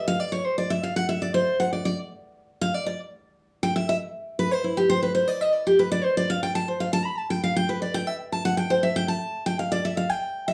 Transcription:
0.08 0.20 F5 loud
0.20 0.32 D5 medium
0.32 0.45 C#5 medium
0.45 0.57 C5 medium
0.58 0.70 D5 medium
0.70 0.83 E5 loud
0.83 0.96 F5 medium
0.96 1.08 F#5 loud
1.09 1.21 E5 loud
1.22 1.34 D5 medium
1.34 1.58 C5 loud
1.60 1.72 F#5 loud
1.73 1.84 D5 medium
1.85 1.97 D5 medium
2.61 2.74 F5 loud
2.74 2.85 D5 medium
2.86 2.99 D5 medium
3.63 3.75 G5 loud
3.76 3.88 E5 loud
3.89 3.96 E5 loud
4.39 4.51 B4 loud
4.51 4.64 C5 loud
4.64 4.77 E4 medium
4.77 4.89 G4 medium
4.90 5.02 C5 loud
5.03 5.14 B4 medium
5.15 5.28 C5 medium
5.28 5.41 D5 loud
5.41 5.54 D#5 loud
5.54 5.66 D5 loud
5.67 5.79 G4 medium
5.79 5.91 B4 medium
5.92 6.04 D5 loud
6.04 6.16 C5 loud
6.17 6.29 D5 loud
6.30 6.42 F5 loud
6.43 6.55 G5 loud
6.55 6.67 A5 loud
6.68 6.80 C5 medium
6.80 6.92 F5 medium
6.93 7.05 A5 loud
7.05 7.18 B5 loud
7.18 7.30 A5 loud
7.30 7.43 G5 loud
7.44 7.56 F5 loud
7.56 7.69 G5 loud
7.69 7.81 B4 medium
7.82 7.94 D5 medium
7.94 8.07 G5 loud
8.07 8.14 E5 loud
8.32 8.45 A5 medium
8.45 8.57 F#5 loud
8.57 8.70 G5 loud
8.70 8.82 C5 medium
8.83 8.95 E5 medium
8.96 9.08 G5 loud
9.08 9.44 A5 medium
9.46 9.58 G5 loud
9.59 9.71 F5 loud
9.72 9.84 D5 loud
9.85 9.97 E5 medium
9.97 10.10 F5 loud
10.10 10.47 G5 loud
10.48 10.54 E5 loud

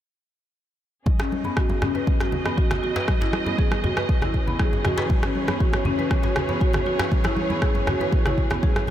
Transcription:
1.06 8.90 E3 medium
1.06 8.90 C#4 medium
1.06 8.90 G#4 medium
1.06 5.06 D#5 medium
1.06 kick loud
1.06 high conga medium
1.19 1.26 C#4 medium
1.19 cross-stick medium
1.19 djembe slap medium
1.19 muted conga medium
1.19 djembe tone medium
1.32 high conga loud
1.44 1.51 B3 medium
1.44 muted conga soft
1.44 high conga medium
1.44 djembe tone medium
1.57 1.69 F#4 medium
1.57 kick loud
1.57 cross-stick medium
1.69 muted conga medium
1.69 high conga medium
1.69 djembe tone medium
1.82 1.95 C#4 medium
1.82 cross-stick medium
1.82 low conga medium
1.82 djembe bass medium
1.95 2.07 B4 medium
1.95 muted conga soft
1.95 djembe tone medium
2.07 kick loud
2.07 high conga medium
2.20 2.27 F#4 medium
2.20 cross-stick medium
2.20 djembe slap medium
2.20 djembe tone medium
2.32 muted conga soft
2.32 low conga medium
2.45 2.52 B3 medium
2.45 cross-stick medium
2.45 djembe tone medium
2.57 2.70 F#4 medium
2.57 kick loud
2.57 muted conga soft
2.71 cross-stick medium
2.71 djembe slap medium
2.71 djembe tone medium
2.71 low conga medium
2.83 2.95 F#4 medium
2.83 muted conga soft
2.96 3.07 B4 medium
2.96 djembe slap medium
2.96 djembe tone medium
3.08 kick loud
3.08 cross-stick medium
3.08 high conga loud
3.21 3.28 E4 medium
3.21 muted conga soft
3.21 djembe slap medium
3.21 djembe tone loud
3.33 cross-stick medium
3.33 high conga loud
3.46 3.53 B3 medium
3.46 muted conga soft
3.46 djembe tone medium
3.46 high conga loud
3.58 3.71 G#4 medium
3.58 kick loud
3.71 cross-stick medium
3.71 muted conga medium
3.71 high conga medium
3.71 djembe tone medium
3.84 3.96 F#4 medium
3.84 low conga medium
3.84 djembe bass medium
3.96 4.08 B4 medium
3.96 cross-stick medium
3.96 muted conga soft
3.96 djembe tone medium
4.09 kick loud
4.22 4.29 E4 medium
4.22 cross-stick medium
4.22 djembe tone medium
4.22 low conga loud
4.34 kick medium
4.34 muted conga soft
4.47 4.54 B3 medium
4.47 djembe tone medium
4.47 low conga medium
4.59 4.72 G#4 medium
4.59 kick loud
4.59 cross-stick medium
4.59 muted conga soft
4.59 high conga medium
4.73 djembe tone medium
4.85 4.97 F#4 loud
4.85 cross-stick medium
4.85 muted conga soft
4.85 low conga loud
4.85 djembe bass medium
4.98 5.09 B4 medium
4.98 djembe slap loud
4.98 djembe tone medium
5.09 8.90 C#5 medium
5.09 kick loud
5.09 high conga loud
5.23 5.30 C#4 medium
5.23 cross-stick medium
5.23 djembe slap medium
5.23 muted conga soft
5.23 djembe tone medium
5.35 high conga medium
5.48 5.55 B3 medium
5.48 cross-stick medium
5.48 muted conga soft
5.48 high conga medium
5.48 djembe tone medium
5.60 5.72 F#4 medium
5.60 kick loud
5.73 cross-stick medium
5.73 muted conga soft
5.73 high conga medium
5.73 djembe tone medium
5.85 5.98 C#4 medium
5.85 djembe bass medium
5.85 low conga medium
5.99 6.10 B4 medium
5.99 muted conga soft
5.99 djembe tone medium
6.11 kick loud
6.11 cross-stick medium
6.11 high conga medium
6.23 6.31 F#4 medium
6.23 djembe slap medium
6.23 djembe tone medium
6.36 cross-stick medium
6.36 muted conga soft
6.36 low conga medium
6.49 6.56 B3 medium
6.49 djembe tone medium
6.61 6.73 F#4 medium
6.61 kick loud
6.61 muted conga soft
6.73 cross-stick medium
6.73 djembe slap medium
6.73 djembe tone medium
6.73 low conga medium
6.86 6.99 F#4 medium
6.86 muted conga soft
6.99 7.11 B4 medium
6.99 cross-stick medium
6.99 djembe slap loud
6.99 djembe tone medium
7.12 kick loud
7.12 high conga loud
7.24 7.31 E4 medium
7.24 cross-stick medium
7.24 djembe slap medium
7.24 muted conga soft
7.24 djembe tone medium
7.37 high conga loud
7.50 7.57 B3 medium
7.50 muted conga soft
7.50 high conga medium
7.50 djembe tone medium
7.62 7.75 G#4 medium
7.62 kick loud
7.62 cross-stick medium
7.74 muted conga soft
7.74 high conga medium
7.74 djembe tone medium
7.87 8.00 F#4 medium
7.87 cross-stick medium
7.87 low conga medium
7.87 djembe bass medium
8.00 8.12 B4 medium
8.00 muted conga soft
8.00 djembe tone medium
8.13 kick loud
8.25 8.32 E4 medium
8.25 cross-stick medium
8.25 djembe tone medium
8.25 low conga loud
8.38 kick medium
8.38 muted conga soft
8.50 8.57 B3 medium
8.50 cross-stick medium
8.50 djembe tone medium
8.50 low conga medium
8.63 8.76 G#4 loud
8.63 kick loud
8.63 muted conga soft
8.63 high conga medium
8.76 cross-stick medium
8.76 djembe tone medium
8.87 djembe bass medium

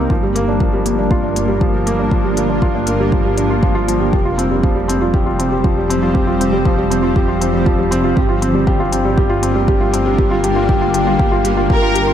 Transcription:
0.00 0.12 G3 medium
0.00 8.14 G3 medium
0.00 0.12 A#3 medium
0.00 0.12 C4 medium
0.00 0.12 D#4 medium
0.00 0.12 G4 medium
0.10 4.11 G1 medium
0.10 0.22 F3 medium
0.10 4.10 A#3 medium
0.10 4.10 D4 medium
0.10 4.10 F4 medium
0.10 4.10 A#4 medium
0.10 kick medium
0.23 0.35 G3 medium
0.35 0.47 A#3 medium
0.35 closed hi-hat medium
0.48 0.55 D4 medium
0.60 0.68 F3 medium
0.60 kick medium
0.73 0.85 G3 medium
0.85 0.98 A#3 medium
0.85 closed hi-hat medium
0.99 1.11 D4 medium
1.11 1.23 F4 medium
1.11 kick loud
1.23 1.36 D4 medium
1.36 1.48 A#3 medium
1.36 closed hi-hat medium
1.48 1.56 G3 medium
1.61 1.73 F3 medium
1.61 kick loud
1.74 1.86 G3 medium
1.87 1.99 A#3 medium
1.87 closed hi-hat medium
1.99 2.06 D4 medium
2.11 2.19 F3 medium
2.11 kick medium
2.24 2.36 G3 medium
2.37 2.49 A#3 medium
2.37 closed hi-hat medium
2.49 2.62 D4 medium
2.62 2.74 F4 medium
2.62 kick medium
2.75 2.87 D4 medium
2.87 2.99 A#3 medium
2.87 closed hi-hat medium
3.00 3.07 G3 medium
3.12 3.25 F3 medium
3.12 kick loud
3.25 3.37 G3 medium
3.37 3.50 D4 medium
3.37 closed hi-hat medium
3.50 3.62 F4 medium
3.63 3.75 F3 medium
3.63 kick loud
3.75 3.87 F4 medium
3.88 4.00 F3 medium
3.88 closed hi-hat medium
4.00 4.11 G4 medium
4.13 8.14 F1 medium
4.13 8.13 F3 medium
4.13 8.13 C4 medium
4.13 4.25 G4 medium
4.13 8.13 G4 medium
4.13 8.13 C5 medium
4.13 kick medium
4.25 4.38 F4 medium
4.38 4.50 C4 medium
4.38 closed hi-hat medium
4.51 4.58 G3 medium
4.63 4.76 F3 medium
4.63 kick loud
4.75 4.88 G3 medium
4.88 5.01 C4 medium
4.88 closed hi-hat medium
5.01 5.09 F4 medium
5.14 5.26 G4 medium
5.14 kick loud
5.26 5.39 F4 medium
5.39 5.51 C4 medium
5.39 closed hi-hat medium
5.52 5.59 G3 medium
5.64 5.77 F3 medium
5.64 kick loud
5.77 5.89 G3 medium
5.90 6.02 C4 medium
5.90 closed hi-hat medium
6.02 6.10 F4 medium
6.02 mid tom medium
6.14 6.27 G4 medium
6.14 kick medium
6.27 6.40 F4 medium
6.40 6.52 C4 medium
6.40 closed hi-hat medium
6.53 6.60 G3 medium
6.65 6.77 F3 medium
6.65 kick medium
6.78 6.90 G3 medium
6.78 mid tom medium
6.90 7.03 C4 medium
6.90 closed hi-hat medium
7.03 7.10 F4 medium
7.16 7.28 G4 medium
7.16 kick medium
7.28 7.41 F4 medium
7.41 7.53 C4 medium
7.41 closed hi-hat medium
7.53 7.61 G3 medium
7.66 7.78 F3 medium
7.66 kick loud
7.79 7.91 G3 medium
7.91 8.03 C4 medium
7.91 closed hi-hat medium
7.91 mid tom medium
8.04 8.11 F4 medium
8.16 12.13 G1 medium
8.16 12.13 G3 medium
8.16 12.13 A#3 medium
8.16 12.13 D4 medium
8.16 10.17 F4 medium
8.16 8.28 G4 medium
8.16 12.13 A#4 medium
8.16 kick medium
8.29 8.41 F4 medium
8.42 8.54 C4 medium
8.42 closed hi-hat medium
8.54 8.62 G3 medium
8.67 8.79 G4 medium
8.67 kick medium
8.80 8.92 F4 medium
8.92 9.04 C4 medium
8.92 closed hi-hat medium
9.05 9.12 G3 medium
9.17 9.30 G4 medium
9.17 kick loud
9.29 9.42 F4 medium
9.43 9.55 C4 medium
9.43 closed hi-hat medium
9.55 9.63 G3 medium
9.68 9.80 G4 medium
9.68 kick loud
9.81 9.93 F4 medium
9.93 10.05 C4 medium
9.93 closed hi-hat medium
10.06 10.13 G3 medium
10.06 mid tom medium
10.18 10.31 G4 medium
10.18 12.13 G4 medium
10.18 kick medium
10.31 10.42 F4 medium
10.44 10.56 G4 medium
10.44 closed hi-hat medium
10.56 10.67 F4 medium
10.69 10.81 G4 medium
10.69 kick loud
10.81 10.92 F4 medium
10.81 mid tom medium
10.94 11.06 G4 medium
10.94 closed hi-hat medium
11.07 11.18 F4 medium
11.19 11.31 G4 medium
11.19 kick loud
11.32 11.43 F4 medium
11.44 11.57 G4 medium
11.44 closed hi-hat medium
11.57 11.68 F4 medium
11.70 11.82 G4 medium
11.70 12.13 A#4 loud
11.70 kick loud
11.82 11.93 F4 medium
11.94 12.07 G4 medium
11.94 closed hi-hat medium
12.07 12.13 F4 medium

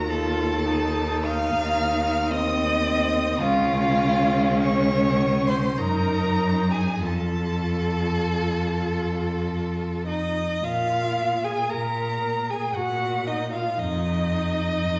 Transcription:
0.00 3.37 D#2 loud
0.00 0.10 A#5 loud
0.09 0.66 F4 loud
0.09 1.23 A4 loud
0.09 1.26 A5 loud
0.67 2.33 D#4 loud
1.25 2.33 F5 loud
1.25 2.32 F6 loud
2.31 2.84 C4 loud
2.31 3.40 D#5 loud
2.31 3.42 D#6 loud
2.85 3.43 C4 loud
3.41 5.79 C#2 loud
3.41 5.80 C#4 loud
3.41 4.61 F4 loud
3.41 4.61 F5 loud
4.62 5.51 C#5 loud
4.62 5.49 C#6 loud
5.48 5.80 C5 loud
5.48 5.80 C6 loud
5.77 7.00 F#2 loud
5.77 7.02 D#4 loud
5.77 6.70 A#4 loud
5.77 6.73 A#5 loud
6.70 7.03 G#4 medium
6.70 7.02 G#5 loud
7.01 10.38 F2 medium
7.01 10.03 F4 medium
7.01 10.06 A4 loud
7.01 10.03 A5 loud
10.06 10.60 D#4 medium
10.06 10.64 D#4 medium
10.06 10.65 D#5 loud
10.62 11.58 A#2 medium
10.62 11.45 F4 medium
10.62 11.46 F5 loud
11.43 11.73 G#4 medium
11.43 11.72 G#4 medium
11.43 11.72 G#5 loud
11.71 12.64 A#2 medium
11.71 12.52 A#4 medium
11.71 12.51 A#4 medium
11.71 12.52 A#5 loud
12.50 12.77 G#4 medium
12.50 12.77 G#5 loud
12.75 13.66 A#2 medium
12.75 13.27 F#4 medium
12.75 13.28 F#4 medium
12.75 13.29 F#5 loud
13.26 13.51 D#4 medium
13.26 13.55 D#4 medium
13.26 13.52 D#5 medium
13.52 13.80 F4 medium
13.52 13.78 F4 medium
13.52 13.80 F5 medium
13.78 14.70 F2 medium
13.78 14.99 D#4 medium
13.78 14.99 D#5 loud
14.83 14.99 F2 medium

